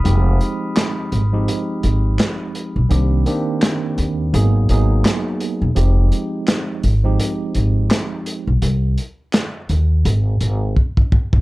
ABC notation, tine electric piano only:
X:1
M:4/4
L:1/16
Q:"Swing 16ths" 1/4=84
K:Fm
V:1 name="Tine electric piano"
[F,A,CEG]6 z [F,A,CEG]8 z | [E,B,C=DG]2 [E,B,CDG]6 [_G,B,_CEA]2 [G,B,CEA]6 | [F,A,CEG]6 z [F,A,CEG]8 z | z16 |]